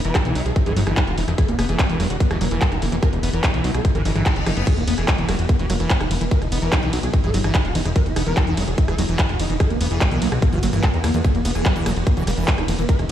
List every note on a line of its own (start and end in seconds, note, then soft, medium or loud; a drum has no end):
0.05 0.12 E1 medium
0.05 0.16 E3 medium
0.05 0.11 B4 medium
0.05 closed hi-hat soft
0.15 0.25 G3 medium
0.15 0.21 E4 medium
0.15 kick loud
0.15 cross-stick medium
0.15 clap loud
0.15 closed hi-hat medium
0.25 0.32 B1 medium
0.25 0.35 E3 medium
0.25 0.31 E4 medium
0.25 closed hi-hat soft
0.35 0.42 B1 loud
0.35 0.42 F#3 medium
0.35 0.42 E4 medium
0.35 open hi-hat loud
0.46 0.53 B1 medium
0.46 0.52 A4 medium
0.46 closed hi-hat soft
0.56 0.62 E4 medium
0.56 kick loud
0.56 cross-stick soft
0.56 closed hi-hat medium
0.66 0.73 G1 medium
0.66 0.73 E3 medium
0.66 0.72 A4 loud
0.66 closed hi-hat soft
0.76 0.84 G1 loud
0.76 0.81 F#3 loud
0.76 0.83 E4 medium
0.76 open hi-hat loud
0.87 0.94 G1 medium
0.87 0.99 E3 medium
0.87 0.93 E4 medium
0.87 cross-stick medium
0.87 closed hi-hat soft
0.97 1.01 F#3 medium
0.97 1.03 E4 medium
0.97 kick loud
0.97 clap loud
0.97 closed hi-hat medium
1.07 1.14 E1 medium
1.07 1.13 F#4 loud
1.07 closed hi-hat soft
1.18 1.25 E1 loud
1.18 1.22 E3 medium
1.18 1.24 E4 medium
1.18 open hi-hat loud
1.28 1.35 E1 medium
1.28 1.32 E3 medium
1.28 1.34 E4 medium
1.28 cross-stick soft
1.28 closed hi-hat soft
1.38 1.42 E3 medium
1.38 1.44 A4 loud
1.38 kick loud
1.38 closed hi-hat medium
1.48 1.55 E1 medium
1.48 1.55 B3 medium
1.48 closed hi-hat soft
1.59 1.66 E1 loud
1.59 1.66 B3 medium
1.59 1.65 B3 medium
1.59 cross-stick medium
1.59 open hi-hat loud
1.69 1.76 E1 medium
1.69 1.81 E3 medium
1.69 1.75 A4 loud
1.69 closed hi-hat soft
1.79 1.89 G3 medium
1.79 1.85 B3 medium
1.79 kick loud
1.79 clap loud
1.79 closed hi-hat medium
1.90 1.97 E1 medium
1.90 1.99 E3 medium
1.90 1.96 B3 medium
1.90 closed hi-hat soft
2.00 2.07 E1 loud
2.00 2.07 F#3 medium
2.00 2.06 B3 medium
2.00 cross-stick soft
2.00 open hi-hat loud
2.10 2.17 E1 medium
2.10 2.16 G4 medium
2.10 closed hi-hat soft
2.20 2.26 B3 medium
2.20 kick loud
2.20 closed hi-hat medium
2.31 2.38 E1 medium
2.31 2.38 E3 medium
2.31 2.37 G4 loud
2.31 cross-stick medium
2.31 closed hi-hat soft
2.41 2.48 E1 loud
2.41 2.45 F#3 loud
2.41 2.47 B3 medium
2.41 open hi-hat loud
2.51 2.58 E1 loud
2.51 2.63 E3 medium
2.51 2.57 B3 medium
2.51 closed hi-hat soft
2.61 2.66 F#3 medium
2.61 2.68 B3 medium
2.61 kick loud
2.61 clap loud
2.61 closed hi-hat medium
2.72 2.79 E1 medium
2.72 2.78 E4 loud
2.72 cross-stick soft
2.72 closed hi-hat soft
2.82 2.89 E1 loud
2.82 2.86 E3 medium
2.82 2.88 B3 medium
2.82 open hi-hat loud
2.92 2.99 E1 medium
2.92 2.96 E3 medium
2.92 2.98 B3 medium
2.92 closed hi-hat soft
3.03 3.07 E3 medium
3.03 3.09 B4 loud
3.03 kick loud
3.03 cross-stick medium
3.03 closed hi-hat medium
3.13 3.20 E1 medium
3.13 3.19 E4 medium
3.13 closed hi-hat soft
3.23 3.30 E1 loud
3.23 3.30 B3 medium
3.23 3.29 E4 medium
3.23 open hi-hat loud
3.33 3.40 E1 medium
3.33 3.45 E3 medium
3.33 3.39 B4 medium
3.33 closed hi-hat soft
3.44 3.53 G3 medium
3.44 3.50 E4 medium
3.44 kick loud
3.44 cross-stick soft
3.44 clap loud
3.44 closed hi-hat medium
3.54 3.61 B1 medium
3.54 3.64 E3 medium
3.54 3.60 E4 medium
3.54 closed hi-hat soft
3.64 3.71 B1 loud
3.64 3.71 F#3 medium
3.64 3.70 E4 medium
3.64 open hi-hat loud
3.74 3.82 B1 medium
3.74 3.81 A4 medium
3.74 cross-stick medium
3.74 closed hi-hat soft
3.85 3.91 E4 medium
3.85 kick loud
3.85 closed hi-hat medium
3.85 reverse cymbal medium
3.95 4.02 G1 medium
3.95 4.02 E3 medium
3.95 4.01 B4 medium
3.95 closed hi-hat soft
4.05 4.12 G1 loud
4.05 4.12 E3 medium
4.05 4.11 E4 medium
4.05 open hi-hat loud
4.16 4.23 G1 medium
4.16 4.25 E3 loud
4.16 4.22 E4 medium
4.16 cross-stick soft
4.16 closed hi-hat soft
4.26 4.32 E4 medium
4.26 kick loud
4.26 clap loud
4.26 closed hi-hat medium
4.36 4.43 F#1 medium
4.36 4.42 D#5 medium
4.36 closed hi-hat soft
4.46 4.53 F#1 loud
4.46 4.51 E3 loud
4.46 4.53 E4 medium
4.46 cross-stick medium
4.46 open hi-hat loud
4.57 4.64 F#1 medium
4.57 4.66 B3 medium
4.57 4.63 E4 medium
4.57 closed hi-hat soft
4.67 4.71 E3 medium
4.67 4.73 A4 loud
4.67 kick loud
4.67 closed hi-hat medium
4.67 crash medium
4.77 4.84 E1 medium
4.77 4.83 B3 medium
4.77 closed hi-hat soft
4.87 4.95 E1 loud
4.87 4.94 B3 medium
4.87 open hi-hat loud
4.87 ride medium
4.98 5.05 E1 medium
4.98 5.10 E3 medium
4.98 5.04 A4 loud
4.98 cross-stick soft
4.98 closed hi-hat soft
5.08 5.18 G3 medium
5.08 5.14 B3 medium
5.08 kick loud
5.08 clap loud
5.08 closed hi-hat medium
5.18 5.25 E1 medium
5.18 5.28 E3 medium
5.18 5.24 B3 medium
5.18 closed hi-hat soft
5.29 5.36 E1 loud
5.29 5.35 F#3 medium
5.29 5.35 B3 medium
5.29 cross-stick medium
5.29 open hi-hat loud
5.29 ride medium
5.39 5.46 E1 medium
5.39 5.45 G4 medium
5.39 closed hi-hat soft
5.49 5.55 B3 medium
5.49 kick loud
5.49 closed hi-hat medium
5.59 5.66 E1 medium
5.59 5.66 E3 medium
5.59 5.66 G4 loud
5.59 closed hi-hat soft
5.70 5.77 E1 loud
5.70 5.74 F#3 loud
5.70 5.76 B3 medium
5.70 cross-stick soft
5.70 open hi-hat loud
5.70 ride medium
5.80 5.87 E1 medium
5.80 5.92 E3 medium
5.80 5.86 B3 medium
5.80 closed hi-hat soft
5.90 5.94 F#3 medium
5.90 5.96 B3 medium
5.90 kick loud
5.90 clap loud
5.90 closed hi-hat medium
6.01 6.08 E1 medium
6.01 6.07 E4 medium
6.01 cross-stick medium
6.01 closed hi-hat soft
6.11 6.18 E1 loud
6.11 6.15 E3 medium
6.11 6.17 B3 medium
6.11 open hi-hat loud
6.11 ride medium
6.21 6.28 E1 medium
6.21 6.25 E3 medium
6.21 6.27 B3 medium
6.21 closed hi-hat soft
6.31 6.35 E3 medium
6.31 6.37 B4 loud
6.31 kick loud
6.31 closed hi-hat medium
6.42 6.49 E1 medium
6.42 6.48 E4 medium
6.42 cross-stick soft
6.42 closed hi-hat soft
6.52 6.59 E1 loud
6.52 6.59 B3 medium
6.52 6.58 E4 medium
6.52 open hi-hat loud
6.52 ride medium
6.62 6.69 E1 medium
6.62 6.74 E3 medium
6.62 6.68 B4 loud
6.62 closed hi-hat soft
6.72 6.82 G3 medium
6.72 6.79 E4 medium
6.72 kick loud
6.72 cross-stick medium
6.72 clap loud
6.72 closed hi-hat medium
6.83 6.90 B1 medium
6.83 6.92 E3 medium
6.83 6.89 E4 medium
6.83 closed hi-hat soft
6.93 7.00 B1 loud
6.93 7.00 F#3 medium
6.93 6.99 E4 medium
6.93 open hi-hat loud
6.93 ride medium
7.03 7.10 B1 loud
7.03 7.09 A4 medium
7.03 closed hi-hat soft
7.13 7.20 E4 medium
7.13 kick loud
7.13 cross-stick soft
7.13 closed hi-hat medium
7.24 7.31 G1 medium
7.24 7.31 E3 medium
7.24 7.30 A4 loud
7.24 closed hi-hat soft
7.34 7.41 G1 loud
7.34 7.38 F#3 loud
7.34 7.40 E4 medium
7.34 open hi-hat loud
7.34 ride medium
7.44 7.51 G1 medium
7.44 7.56 E3 medium
7.44 7.50 E4 medium
7.44 cross-stick medium
7.44 closed hi-hat soft
7.55 7.59 F#3 medium
7.55 7.61 E4 medium
7.55 kick loud
7.55 clap loud
7.55 closed hi-hat medium
7.65 7.72 E1 medium
7.65 7.71 F#4 medium
7.65 closed hi-hat soft
7.75 7.82 E1 loud
7.75 7.79 E3 medium
7.75 7.81 E4 medium
7.75 open hi-hat loud
7.75 ride medium
7.85 7.92 E1 loud
7.85 7.90 E3 medium
7.85 7.91 E4 medium
7.85 cross-stick soft
7.85 closed hi-hat soft
7.96 8.00 E3 medium
7.96 8.02 B4 loud
7.96 kick loud
7.96 closed hi-hat medium
8.06 8.13 E1 medium
8.06 8.12 E4 medium
8.06 closed hi-hat soft
8.16 8.23 E1 loud
8.16 8.23 B3 medium
8.16 8.22 E4 medium
8.16 cross-stick medium
8.16 open hi-hat loud
8.16 ride medium
8.27 8.34 E1 loud
8.27 8.38 E3 medium
8.27 8.33 B4 loud
8.27 closed hi-hat soft
8.37 8.47 G3 medium
8.37 8.43 E4 medium
8.37 kick loud
8.37 clap loud
8.37 closed hi-hat medium
8.47 8.54 E1 medium
8.47 8.57 E3 medium
8.47 8.53 E4 medium
8.47 closed hi-hat soft
8.57 8.64 E1 loud
8.57 8.64 F#3 medium
8.57 8.63 E4 medium
8.57 cross-stick soft
8.57 open hi-hat loud
8.57 ride medium
8.68 8.75 E1 loud
8.68 8.74 A4 medium
8.68 closed hi-hat soft
8.78 8.84 E4 medium
8.78 kick loud
8.78 closed hi-hat medium
8.88 8.95 E1 medium
8.88 8.95 E3 medium
8.88 8.94 A4 loud
8.88 cross-stick medium
8.88 closed hi-hat soft
8.98 9.05 E1 loud
8.98 9.03 F#3 loud
8.98 9.05 E4 medium
8.98 open hi-hat loud
8.98 ride medium
9.09 9.16 E1 medium
9.09 9.21 E3 medium
9.09 9.15 E4 medium
9.09 closed hi-hat soft
9.19 9.23 F#3 medium
9.19 9.25 E4 medium
9.19 kick loud
9.19 clap loud
9.19 closed hi-hat medium
9.29 9.36 E1 medium
9.29 9.35 F#4 loud
9.29 cross-stick soft
9.29 closed hi-hat soft
9.40 9.47 E1 loud
9.40 9.44 E3 medium
9.40 9.46 E4 medium
9.40 open hi-hat loud
9.40 ride medium
9.50 9.57 E1 medium
9.50 9.54 E3 medium
9.50 9.56 E4 medium
9.50 closed hi-hat soft
9.60 9.64 E3 medium
9.60 9.66 A4 loud
9.60 kick loud
9.60 cross-stick medium
9.60 closed hi-hat medium
9.70 9.77 E1 medium
9.70 9.76 B3 medium
9.70 closed hi-hat soft
9.81 9.88 E1 loud
9.81 9.87 B3 medium
9.81 9.88 B3 medium
9.81 open hi-hat loud
9.81 ride medium
9.91 9.98 E1 medium
9.91 10.03 E3 medium
9.91 9.97 A4 loud
9.91 closed hi-hat soft
10.01 10.11 G3 medium
10.01 10.07 B3 medium
10.01 kick loud
10.01 cross-stick soft
10.01 clap loud
10.01 closed hi-hat medium
10.11 10.18 B1 medium
10.11 10.21 E3 medium
10.11 10.18 B3 medium
10.11 closed hi-hat soft
10.22 10.29 B1 loud
10.22 10.29 F#3 medium
10.22 10.28 B3 medium
10.22 open hi-hat loud
10.22 ride medium
10.32 10.39 B1 loud
10.32 10.38 G4 medium
10.32 cross-stick medium
10.32 closed hi-hat soft
10.42 10.48 B3 medium
10.42 kick loud
10.42 closed hi-hat medium
10.53 10.60 G1 medium
10.53 10.59 E3 medium
10.53 10.59 F#4 loud
10.53 closed hi-hat soft
10.63 10.70 G1 loud
10.63 10.67 F#3 loud
10.63 10.69 B3 medium
10.63 open hi-hat loud
10.63 ride medium
10.73 10.80 G1 medium
10.73 10.85 E3 medium
10.73 10.79 B3 medium
10.73 cross-stick soft
10.73 closed hi-hat soft
10.83 10.88 F#3 medium
10.83 10.89 B3 medium
10.83 kick loud
10.83 clap loud
10.83 closed hi-hat medium
10.94 11.01 E2 medium
10.94 11.00 E4 medium
10.94 closed hi-hat soft
11.04 11.11 E2 loud
11.04 11.08 E3 medium
11.04 11.10 B3 medium
11.04 cross-stick medium
11.04 open hi-hat loud
11.04 ride medium
11.14 11.21 E2 medium
11.14 11.18 E3 medium
11.14 11.20 B3 medium
11.14 closed hi-hat soft
11.24 11.29 E3 medium
11.24 11.31 A4 medium
11.24 kick loud
11.24 closed hi-hat medium
11.35 11.42 E1 medium
11.35 11.41 B3 medium
11.35 closed hi-hat soft
11.45 11.52 E1 loud
11.45 11.51 B3 medium
11.45 11.52 B3 medium
11.45 open hi-hat loud
11.45 ride medium
11.55 11.62 E1 loud
11.55 11.67 E3 medium
11.55 11.61 A4 loud
11.55 cross-stick soft
11.55 closed hi-hat soft
11.66 11.75 G3 medium
11.66 11.72 B3 medium
11.66 kick loud
11.66 clap loud
11.66 closed hi-hat medium
11.76 11.83 E1 medium
11.76 11.86 E3 medium
11.76 11.82 B3 medium
11.76 closed hi-hat soft
11.86 11.93 E1 loud
11.86 11.93 F#3 medium
11.86 11.92 B3 medium
11.86 cross-stick medium
11.86 open hi-hat loud
11.86 ride medium
11.96 12.03 E1 loud
11.96 12.03 G4 medium
11.96 closed hi-hat soft
12.07 12.13 B3 medium
12.07 kick loud
12.07 closed hi-hat medium
12.17 12.24 E1 medium
12.17 12.24 E3 medium
12.17 12.23 G4 loud
12.17 closed hi-hat soft
12.27 12.34 E1 loud
12.27 12.31 G3 medium
12.27 12.33 B3 medium
12.27 cross-stick soft
12.27 open hi-hat loud
12.27 ride medium
12.38 12.45 E1 medium
12.38 12.49 E3 medium
12.38 12.44 B3 medium
12.38 closed hi-hat soft
12.48 12.52 F#3 medium
12.48 12.54 B3 medium
12.48 kick loud
12.48 clap loud
12.48 closed hi-hat medium
12.58 12.65 E1 medium
12.58 12.64 E4 medium
12.58 cross-stick medium
12.58 closed hi-hat soft
12.68 12.75 E1 loud
12.68 12.72 E3 medium
12.68 12.74 B3 medium
12.68 open hi-hat loud
12.68 ride medium
12.79 12.86 E1 medium
12.79 12.83 E3 medium
12.79 12.85 B3 medium
12.79 closed hi-hat soft
12.89 12.93 E3 medium
12.89 12.95 B4 loud
12.89 kick loud
12.89 closed hi-hat medium
12.99 13.06 E1 medium
12.99 13.05 E4 medium
12.99 cross-stick soft
12.99 closed hi-hat soft